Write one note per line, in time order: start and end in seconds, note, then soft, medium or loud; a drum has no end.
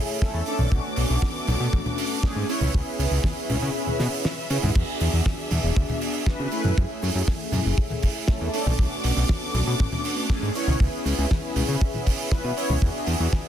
0.00 0.18 A3 medium
0.00 0.45 A3 medium
0.00 0.19 C#4 medium
0.00 0.19 E4 medium
0.00 0.19 G#4 medium
0.00 0.43 G#4 medium
0.00 0.43 E5 loud
0.09 cabasa soft
0.21 0.44 A3 loud
0.21 0.44 C#4 medium
0.21 0.44 E4 medium
0.21 0.44 A4 loud
0.21 kick loud
0.21 snare loud
0.21 cabasa medium
0.34 0.42 E2 medium
0.34 cabasa soft
0.46 0.69 A3 loud
0.46 2.47 B3 medium
0.46 0.69 C#4 medium
0.46 0.69 D4 medium
0.46 2.47 A4 medium
0.46 0.69 A4 loud
0.46 2.47 D6 medium
0.46 open hi-hat loud
0.46 cabasa medium
0.59 0.67 B1 loud
0.59 high conga medium
0.59 low conga medium
0.59 cabasa soft
0.71 0.80 B1 loud
0.71 2.20 A3 medium
0.71 2.20 C#4 medium
0.71 2.20 D4 medium
0.71 2.21 F#4 medium
0.71 kick loud
0.71 cabasa medium
0.85 cabasa soft
0.96 1.05 B1 loud
0.96 open hi-hat loud
0.96 cabasa medium
1.10 1.18 B1 loud
1.22 kick loud
1.22 snare loud
1.22 high conga medium
1.22 cabasa soft
1.36 cabasa soft
1.47 1.55 B1 medium
1.47 open hi-hat loud
1.47 low conga loud
1.47 cabasa loud
1.60 1.68 B2 medium
1.60 cabasa soft
1.73 1.81 A1 loud
1.73 kick loud
1.73 cabasa medium
1.86 high conga medium
1.86 low conga medium
1.86 cabasa soft
1.98 open hi-hat loud
1.98 cabasa medium
2.11 cabasa soft
2.23 2.45 A3 medium
2.23 2.45 C#4 medium
2.23 2.46 D4 medium
2.23 2.46 G#4 loud
2.23 kick loud
2.23 snare loud
2.23 cabasa medium
2.36 2.44 G#2 loud
2.36 cabasa soft
2.48 2.71 B3 loud
2.48 4.73 C#4 medium
2.48 2.71 C#4 medium
2.48 2.71 E4 medium
2.48 4.73 B4 medium
2.48 2.71 C#5 loud
2.48 8.50 E5 loud
2.48 open hi-hat loud
2.48 cabasa loud
2.61 2.69 C#2 loud
2.61 high conga medium
2.61 low conga medium
2.61 cabasa soft
2.73 2.82 C#2 loud
2.73 4.21 B3 medium
2.73 4.22 C#4 medium
2.73 4.22 E4 medium
2.73 4.23 G#4 medium
2.73 kick loud
2.73 cabasa medium
2.87 cabasa soft
2.99 3.07 C#2 loud
2.99 open hi-hat loud
2.99 cabasa loud
3.11 3.19 C#2 loud
3.11 cabasa soft
3.24 kick loud
3.24 snare loud
3.24 high conga medium
3.24 cabasa medium
3.37 cabasa soft
3.49 3.57 C#2 medium
3.49 open hi-hat loud
3.49 low conga loud
3.49 cabasa medium
3.62 3.70 C#3 medium
3.62 cabasa soft
3.75 cabasa medium
3.87 high conga medium
3.87 low conga medium
3.87 cabasa soft
4.00 4.08 B2 loud
4.00 snare medium
4.00 open hi-hat loud
4.00 cabasa loud
4.12 cabasa soft
4.25 snare loud
4.25 cabasa medium
4.38 cabasa soft
4.50 4.58 C#3 medium
4.50 4.72 B3 medium
4.50 4.72 C#4 medium
4.50 4.73 E4 medium
4.50 4.73 G#4 medium
4.50 open hi-hat loud
4.50 cabasa loud
4.63 4.71 G#2 loud
4.63 high conga loud
4.63 low conga medium
4.63 cabasa soft
4.75 4.83 E2 medium
4.75 6.50 D4 medium
4.75 8.50 G#4 medium
4.75 6.24 G#4 medium
4.75 kick loud
4.75 crash medium
4.75 cabasa medium
4.88 cabasa soft
5.00 5.08 E2 loud
5.00 open hi-hat loud
5.00 cabasa medium
5.13 5.21 E2 loud
5.13 cabasa soft
5.26 kick loud
5.26 snare loud
5.26 high conga medium
5.26 cabasa medium
5.39 cabasa soft
5.51 5.59 E2 medium
5.51 open hi-hat loud
5.51 low conga medium
5.51 cabasa loud
5.64 5.71 E1 medium
5.64 cabasa soft
5.76 5.84 D2 loud
5.76 kick loud
5.76 cabasa medium
5.89 high conga medium
5.89 low conga medium
5.89 cabasa soft
6.01 open hi-hat loud
6.01 cabasa loud
6.15 cabasa soft
6.26 6.49 B3 loud
6.26 6.49 D4 medium
6.26 6.49 F#4 medium
6.26 6.49 B4 loud
6.26 kick loud
6.26 snare loud
6.26 cabasa medium
6.39 6.47 C#3 loud
6.39 cabasa soft
6.51 6.74 A3 loud
6.51 8.52 A3 medium
6.51 6.74 C#4 medium
6.51 6.74 E4 loud
6.51 6.74 B4 loud
6.51 open hi-hat loud
6.51 cabasa loud
6.64 6.72 F#2 loud
6.64 high conga medium
6.64 low conga medium
6.64 cabasa soft
6.76 6.85 F#2 loud
6.76 8.25 A3 medium
6.76 8.25 C#4 medium
6.76 8.26 E4 medium
6.76 8.26 G#4 medium
6.76 kick loud
6.76 cabasa medium
6.89 cabasa soft
7.02 7.10 F#2 loud
7.02 open hi-hat loud
7.02 cabasa medium
7.15 7.23 F#2 loud
7.15 cabasa soft
7.27 kick loud
7.27 snare loud
7.27 high conga medium
7.27 cabasa medium
7.40 cabasa soft
7.52 7.61 F#2 medium
7.52 open hi-hat loud
7.52 low conga loud
7.52 cabasa medium
7.66 7.73 F#1 medium
7.66 cabasa soft
7.78 kick loud
7.78 cabasa medium
7.90 high conga medium
7.90 low conga medium
7.90 cabasa soft
8.03 kick medium
8.03 open hi-hat loud
8.03 cabasa medium
8.16 cabasa soft
8.28 8.50 A3 loud
8.28 8.50 C#4 medium
8.28 8.51 E4 medium
8.28 8.51 A4 loud
8.28 kick loud
8.28 snare loud
8.28 cabasa medium
8.41 8.49 E2 medium
8.41 cabasa soft
8.53 8.75 A3 loud
8.53 10.53 B3 medium
8.53 8.76 C#4 medium
8.53 8.76 D4 medium
8.53 10.53 A4 medium
8.53 8.76 A4 loud
8.53 10.53 D6 loud
8.53 open hi-hat loud
8.53 cabasa medium
8.66 8.74 B1 loud
8.66 high conga medium
8.66 low conga loud
8.66 cabasa soft
8.78 8.87 B1 loud
8.78 10.26 A3 medium
8.78 10.27 F#4 medium
8.78 kick loud
8.78 cabasa soft
8.92 cabasa soft
9.04 9.12 B1 loud
9.04 open hi-hat loud
9.04 cabasa medium
9.17 9.24 B1 loud
9.29 kick loud
9.29 snare loud
9.29 high conga loud
9.29 cabasa soft
9.41 cabasa soft
9.54 9.62 B1 medium
9.54 open hi-hat loud
9.54 low conga loud
9.54 cabasa loud
9.67 9.75 B2 medium
9.67 cabasa soft
9.79 9.88 A1 loud
9.79 kick loud
9.79 cabasa medium
9.92 high conga medium
9.92 low conga medium
9.92 cabasa soft
10.04 open hi-hat loud
10.04 cabasa medium
10.17 cabasa soft
10.29 10.52 A3 loud
10.29 10.52 C#4 medium
10.29 10.52 D4 medium
10.29 10.52 G#4 loud
10.29 kick loud
10.29 snare loud
10.29 cabasa medium
10.42 10.50 G#2 loud
10.42 cabasa soft
10.55 10.77 B3 loud
10.55 10.77 C#4 medium
10.55 12.80 C#4 medium
10.55 10.77 E4 medium
10.55 12.80 B4 medium
10.55 10.78 C#5 loud
10.55 13.48 E5 loud
10.55 open hi-hat loud
10.55 cabasa loud
10.68 10.75 C#2 loud
10.68 high conga loud
10.68 low conga medium
10.68 cabasa soft
10.79 10.88 C#2 loud
10.79 12.28 B3 medium
10.79 12.29 E4 medium
10.79 kick loud
10.79 cabasa soft
10.94 cabasa soft
11.05 11.13 C#2 loud
11.05 open hi-hat loud
11.05 cabasa medium
11.18 11.26 C#2 loud
11.18 cabasa soft
11.31 kick loud
11.31 snare loud
11.31 high conga medium
11.31 cabasa medium
11.44 cabasa soft
11.56 11.64 C#2 medium
11.56 open hi-hat loud
11.56 low conga medium
11.56 cabasa medium
11.68 11.76 C#3 medium
11.68 cabasa soft
11.81 kick loud
11.81 cabasa medium
11.94 high conga medium
11.94 low conga medium
11.94 cabasa soft
12.06 kick medium
12.06 open hi-hat loud
12.06 cabasa medium
12.19 cabasa soft
12.31 12.54 B3 medium
12.31 12.54 C#4 medium
12.31 12.54 E4 medium
12.31 12.54 B4 loud
12.31 kick loud
12.31 snare loud
12.31 cabasa medium
12.44 12.52 B2 medium
12.44 cabasa soft
12.56 12.79 B3 loud
12.56 12.79 C#4 medium
12.56 12.79 E4 medium
12.56 12.79 C#5 loud
12.56 open hi-hat loud
12.56 cabasa loud
12.70 12.77 C#2 loud
12.70 high conga loud
12.70 low conga medium
12.70 cabasa soft
12.81 12.90 E2 loud
12.81 13.48 B3 medium
12.81 13.48 D4 medium
12.81 13.48 F#4 medium
12.81 13.48 G#4 medium
12.81 kick loud
12.81 cabasa soft
12.95 cabasa soft
13.07 13.15 E2 loud
13.07 open hi-hat loud
13.07 cabasa medium
13.20 13.28 E2 loud
13.33 kick loud
13.33 snare loud
13.33 high conga loud
13.33 cabasa medium